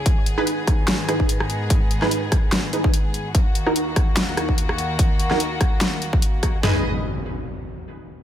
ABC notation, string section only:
X:1
M:4/4
L:1/8
Q:"Swing 16ths" 1/4=146
K:G#m
V:1 name="String section"
[G,,D,B,G]8- | [G,,D,B,G]8 | [D,,D,A,F]8- | [D,,D,A,F]8 |
[G,GBd] z6 z |]